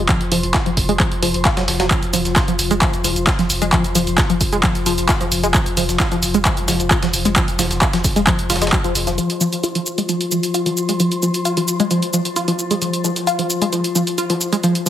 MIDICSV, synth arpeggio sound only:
0, 0, Header, 1, 2, 480
1, 0, Start_track
1, 0, Key_signature, -4, "minor"
1, 0, Tempo, 454545
1, 94, Time_signature, 4, 2, 24, 8
1, 15725, End_track
2, 0, Start_track
2, 0, Title_t, "Synth arpeggio sound"
2, 0, Program_c, 0, 84
2, 93, Note_on_c, 0, 53, 84
2, 204, Note_off_c, 0, 53, 0
2, 334, Note_on_c, 0, 53, 79
2, 407, Note_off_c, 0, 53, 0
2, 573, Note_on_c, 0, 65, 100
2, 647, Note_off_c, 0, 65, 0
2, 698, Note_on_c, 0, 53, 77
2, 739, Note_off_c, 0, 53, 0
2, 938, Note_on_c, 0, 56, 102
2, 979, Note_off_c, 0, 56, 0
2, 1054, Note_on_c, 0, 53, 84
2, 1164, Note_off_c, 0, 53, 0
2, 1293, Note_on_c, 0, 53, 76
2, 1367, Note_off_c, 0, 53, 0
2, 1533, Note_on_c, 0, 65, 104
2, 1578, Note_off_c, 0, 65, 0
2, 1658, Note_on_c, 0, 54, 76
2, 1726, Note_off_c, 0, 54, 0
2, 1898, Note_on_c, 0, 54, 99
2, 1966, Note_off_c, 0, 54, 0
2, 2013, Note_on_c, 0, 53, 85
2, 2124, Note_off_c, 0, 53, 0
2, 2254, Note_on_c, 0, 53, 77
2, 2327, Note_off_c, 0, 53, 0
2, 2494, Note_on_c, 0, 65, 100
2, 2567, Note_off_c, 0, 65, 0
2, 2618, Note_on_c, 0, 53, 75
2, 2659, Note_off_c, 0, 53, 0
2, 2859, Note_on_c, 0, 56, 103
2, 2899, Note_off_c, 0, 56, 0
2, 2974, Note_on_c, 0, 53, 82
2, 3084, Note_off_c, 0, 53, 0
2, 3214, Note_on_c, 0, 53, 77
2, 3288, Note_off_c, 0, 53, 0
2, 3454, Note_on_c, 0, 65, 101
2, 3528, Note_off_c, 0, 65, 0
2, 3579, Note_on_c, 0, 53, 80
2, 3620, Note_off_c, 0, 53, 0
2, 3819, Note_on_c, 0, 56, 100
2, 3860, Note_off_c, 0, 56, 0
2, 3935, Note_on_c, 0, 53, 86
2, 4044, Note_off_c, 0, 53, 0
2, 4174, Note_on_c, 0, 53, 77
2, 4248, Note_off_c, 0, 53, 0
2, 4414, Note_on_c, 0, 65, 102
2, 4487, Note_off_c, 0, 65, 0
2, 4539, Note_on_c, 0, 53, 76
2, 4579, Note_off_c, 0, 53, 0
2, 4779, Note_on_c, 0, 56, 101
2, 4819, Note_off_c, 0, 56, 0
2, 4894, Note_on_c, 0, 53, 82
2, 5004, Note_off_c, 0, 53, 0
2, 5134, Note_on_c, 0, 53, 75
2, 5208, Note_off_c, 0, 53, 0
2, 5375, Note_on_c, 0, 65, 102
2, 5448, Note_off_c, 0, 65, 0
2, 5499, Note_on_c, 0, 53, 78
2, 5540, Note_off_c, 0, 53, 0
2, 5739, Note_on_c, 0, 56, 100
2, 5779, Note_off_c, 0, 56, 0
2, 5854, Note_on_c, 0, 53, 86
2, 5964, Note_off_c, 0, 53, 0
2, 6094, Note_on_c, 0, 53, 78
2, 6168, Note_off_c, 0, 53, 0
2, 6335, Note_on_c, 0, 65, 101
2, 6408, Note_off_c, 0, 65, 0
2, 6459, Note_on_c, 0, 53, 75
2, 6500, Note_off_c, 0, 53, 0
2, 6699, Note_on_c, 0, 56, 102
2, 6740, Note_off_c, 0, 56, 0
2, 6815, Note_on_c, 0, 53, 83
2, 6925, Note_off_c, 0, 53, 0
2, 7055, Note_on_c, 0, 53, 76
2, 7128, Note_off_c, 0, 53, 0
2, 7295, Note_on_c, 0, 65, 101
2, 7368, Note_off_c, 0, 65, 0
2, 7419, Note_on_c, 0, 53, 80
2, 7460, Note_off_c, 0, 53, 0
2, 7659, Note_on_c, 0, 56, 101
2, 7700, Note_off_c, 0, 56, 0
2, 7774, Note_on_c, 0, 53, 83
2, 7884, Note_off_c, 0, 53, 0
2, 8014, Note_on_c, 0, 53, 77
2, 8087, Note_off_c, 0, 53, 0
2, 8254, Note_on_c, 0, 65, 105
2, 8328, Note_off_c, 0, 65, 0
2, 8379, Note_on_c, 0, 53, 77
2, 8419, Note_off_c, 0, 53, 0
2, 8619, Note_on_c, 0, 56, 103
2, 8659, Note_off_c, 0, 56, 0
2, 8734, Note_on_c, 0, 53, 86
2, 8844, Note_off_c, 0, 53, 0
2, 8974, Note_on_c, 0, 65, 77
2, 9047, Note_off_c, 0, 65, 0
2, 9099, Note_on_c, 0, 56, 103
2, 9201, Note_off_c, 0, 56, 0
2, 9214, Note_on_c, 0, 54, 99
2, 9258, Note_off_c, 0, 54, 0
2, 9339, Note_on_c, 0, 53, 78
2, 9441, Note_off_c, 0, 53, 0
2, 9579, Note_on_c, 0, 53, 78
2, 9620, Note_off_c, 0, 53, 0
2, 9694, Note_on_c, 0, 53, 82
2, 9804, Note_off_c, 0, 53, 0
2, 9934, Note_on_c, 0, 53, 76
2, 10007, Note_off_c, 0, 53, 0
2, 10174, Note_on_c, 0, 65, 97
2, 10247, Note_off_c, 0, 65, 0
2, 10299, Note_on_c, 0, 53, 74
2, 10340, Note_off_c, 0, 53, 0
2, 10539, Note_on_c, 0, 56, 100
2, 10580, Note_off_c, 0, 56, 0
2, 10654, Note_on_c, 0, 53, 84
2, 10764, Note_off_c, 0, 53, 0
2, 10894, Note_on_c, 0, 53, 72
2, 10967, Note_off_c, 0, 53, 0
2, 11134, Note_on_c, 0, 65, 100
2, 11207, Note_off_c, 0, 65, 0
2, 11259, Note_on_c, 0, 53, 76
2, 11299, Note_off_c, 0, 53, 0
2, 11499, Note_on_c, 0, 56, 97
2, 11539, Note_off_c, 0, 56, 0
2, 11614, Note_on_c, 0, 53, 82
2, 11724, Note_off_c, 0, 53, 0
2, 11854, Note_on_c, 0, 53, 76
2, 11927, Note_off_c, 0, 53, 0
2, 12094, Note_on_c, 0, 65, 96
2, 12167, Note_off_c, 0, 65, 0
2, 12219, Note_on_c, 0, 53, 74
2, 12259, Note_off_c, 0, 53, 0
2, 12459, Note_on_c, 0, 56, 99
2, 12499, Note_off_c, 0, 56, 0
2, 12574, Note_on_c, 0, 53, 81
2, 12684, Note_off_c, 0, 53, 0
2, 12814, Note_on_c, 0, 53, 74
2, 12888, Note_off_c, 0, 53, 0
2, 13054, Note_on_c, 0, 65, 99
2, 13128, Note_off_c, 0, 65, 0
2, 13179, Note_on_c, 0, 53, 77
2, 13219, Note_off_c, 0, 53, 0
2, 13419, Note_on_c, 0, 56, 99
2, 13460, Note_off_c, 0, 56, 0
2, 13534, Note_on_c, 0, 53, 82
2, 13644, Note_off_c, 0, 53, 0
2, 13775, Note_on_c, 0, 53, 76
2, 13848, Note_off_c, 0, 53, 0
2, 14015, Note_on_c, 0, 65, 102
2, 14088, Note_off_c, 0, 65, 0
2, 14139, Note_on_c, 0, 53, 76
2, 14180, Note_off_c, 0, 53, 0
2, 14379, Note_on_c, 0, 56, 100
2, 14420, Note_off_c, 0, 56, 0
2, 14494, Note_on_c, 0, 53, 83
2, 14604, Note_off_c, 0, 53, 0
2, 14735, Note_on_c, 0, 53, 73
2, 14808, Note_off_c, 0, 53, 0
2, 14975, Note_on_c, 0, 65, 97
2, 15048, Note_off_c, 0, 65, 0
2, 15099, Note_on_c, 0, 53, 78
2, 15140, Note_off_c, 0, 53, 0
2, 15339, Note_on_c, 0, 56, 100
2, 15379, Note_off_c, 0, 56, 0
2, 15454, Note_on_c, 0, 53, 83
2, 15564, Note_off_c, 0, 53, 0
2, 15725, End_track
0, 0, End_of_file